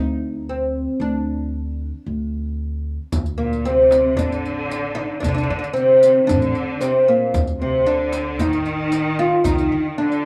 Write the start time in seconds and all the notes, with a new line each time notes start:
Already playing: D2 D#4
0.49 C4
1.00 D2 D4
2.06 D2
3.12 D2, riq, darbuka dum
3.26 riq
3.38 A#2 A#3
3.52 riq, darbuka ka
3.65 C3 C4, riq
3.78 darbuka ka
3.91 riq, darbuka tek
4.17 A1 D3 D4, riq, darbuka dum
4.31 riq, darbuka ka
4.46 riq
4.71 riq, darbuka tek
4.95 D#4
5.20 C2 D3 D4, riq, darbuka dum
5.29 D4
5.35 D4, riq
5.43 D4
5.50 D3 D4
5.59 D4, darbuka ka
5.64 riq
5.73 C3 C4, riq
5.90 darbuka ka
6.03 riq
6.22 D#3
6.27 A1 D3 D4, riq, darbuka dum
6.42 riq, darbuka ka
6.55 riq
6.81 C3 C4, riq, darbuka tek
7.08 A#2 A#3
7.34 D2, riq, darbuka dum
7.47 riq
7.60 C3 C4
7.74 darbuka ka
7.86 D3 D4, riq
8.00 darbuka ka
8.12 riq, darbuka tek
8.39 A1 D#3 D#4, riq, darbuka dum
8.53 riq, darbuka ka
8.66 riq
8.92 riq, darbuka tek
9.19 F4
9.44 C2 D#3 D#4, riq, darbuka dum
9.58 riq, darbuka ka
9.72 D3
9.86 darbuka ka
9.98 D3 D4, darbuka ka
10.12 riq, darbuka ka